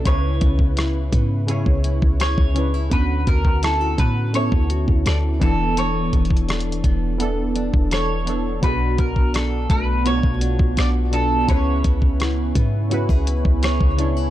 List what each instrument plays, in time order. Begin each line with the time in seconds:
Already playing: nylon-string guitar A3 D4
0.04 808-style bass C#2, synth keys C#3 C#4 E4, nylon-string guitar C#3 G#4, mandolin C#5, kick, closed hi-hat
0.08 synth keys B4
0.41 808-style bass C#2, nylon-string guitar B3, kick, closed hi-hat
0.59 kick
0.77 nylon-string guitar E4, cross-stick, closed hi-hat
1.12 808-style bass G#2, nylon-string guitar B3, kick, closed hi-hat
1.47 synth keys C#3 C#4 E4, nylon-string guitar G#4, closed hi-hat
1.51 synth keys C#5
1.66 808-style bass C#2, kick
1.84 nylon-string guitar E4, closed hi-hat
2.02 808-style bass C#2, kick
2.20 nylon-string guitar G#4, mandolin C#5, cross-stick, closed hi-hat
2.38 808-style bass C#2, kick
2.54 synth keys C#3 C#4 E4, nylon-string guitar D4, closed hi-hat
2.58 synth keys B4
2.74 nylon-string guitar E4
2.90 808-style bass D2, synth keys D3 B3 C#4, nylon-string guitar D3, mandolin B4, kick, closed hi-hat
2.94 synth keys F#4
3.27 808-style bass D2, nylon-string guitar B3, mandolin A#4, kick, closed hi-hat
3.45 kick
3.63 nylon-string guitar E4, mandolin A4, cross-stick, closed hi-hat
3.81 nylon-string guitar F#4
3.98 808-style bass A2, nylon-string guitar B3, mandolin B4, kick, closed hi-hat
4.33 synth keys D3 B3 C#4, nylon-string guitar A4, mandolin C#5, closed hi-hat
4.37 synth keys E4
4.52 808-style bass D2, kick
4.70 nylon-string guitar F#4, closed hi-hat
4.88 808-style bass D2, kick
5.06 808-style bass D2, nylon-string guitar A4, mandolin D5, cross-stick, closed hi-hat
5.40 808-style bass E1, synth keys E3 B3 D4, nylon-string guitar E3, mandolin A4, kick, closed hi-hat
5.44 synth keys A4
5.77 nylon-string guitar E3 A4, mandolin C#5, closed hi-hat
6.13 808-style bass E1, nylon-string guitar B3, kick, closed hi-hat
6.25 closed hi-hat
6.30 kick
6.37 closed hi-hat
6.49 nylon-string guitar D4, cross-stick, closed hi-hat
6.60 closed hi-hat
6.72 closed hi-hat
6.84 808-style bass E1, nylon-string guitar B3, kick, closed hi-hat
7.18 synth keys E3 B3 D4, nylon-string guitar A4, closed hi-hat
7.22 synth keys A4
7.56 nylon-string guitar D4, closed hi-hat
7.74 808-style bass E1, kick
7.91 nylon-string guitar A4, mandolin C#5, cross-stick, closed hi-hat
8.25 synth keys E3 B3 D4, nylon-string guitar D4, closed hi-hat
8.29 synth keys A4
8.61 808-style bass B1, synth keys B2 B3 D4, nylon-string guitar B2 F#4, ambient pad B3 F#5 A5, mandolin B4, kick, closed hi-hat
8.65 synth keys G#4
8.72 synth keys F#4
8.98 808-style bass B1, mandolin A#4, kick, closed hi-hat
9.16 kick
9.34 nylon-string guitar D4, mandolin A4, cross-stick, closed hi-hat
9.70 808-style bass B1, nylon-string guitar A3, mandolin B4, kick, closed hi-hat
10.04 synth keys B2 B3 D4, nylon-string guitar F#4, mandolin C#5, closed hi-hat
10.09 synth keys F4
10.15 synth keys F#4
10.23 808-style bass B1, kick
10.41 nylon-string guitar D4, closed hi-hat
10.59 808-style bass B1, kick
10.77 808-style bass B1, nylon-string guitar F#4, mandolin D5, cross-stick, closed hi-hat
11.11 synth keys B2 B3 D4, nylon-string guitar D4, mandolin A4, closed hi-hat
11.16 synth keys A4
11.47 808-style bass C#2, synth keys C#3 C#4 E4, nylon-string guitar C#3 G#4, mandolin C#5, ambient pad E5 G#5 C#6, kick, closed hi-hat
11.51 synth keys B4
11.84 808-style bass C#2, nylon-string guitar B3, kick, closed hi-hat
12.02 kick
12.20 nylon-string guitar E4, cross-stick, closed hi-hat
12.55 808-style bass G#2, nylon-string guitar B3, kick, closed hi-hat
12.90 synth keys C#3 C#4 E4, nylon-string guitar F#4, closed hi-hat
12.94 synth keys B4
13.09 808-style bass C#2, nylon-string guitar G#4, kick
13.27 nylon-string guitar E4, closed hi-hat
13.45 808-style bass C#2, kick
13.63 nylon-string guitar G#4, mandolin C#5, cross-stick, closed hi-hat
13.81 808-style bass C#2, kick
13.97 synth keys C#3 C#4 E4, nylon-string guitar D4, closed hi-hat
14.01 synth keys C#5
14.17 nylon-string guitar E4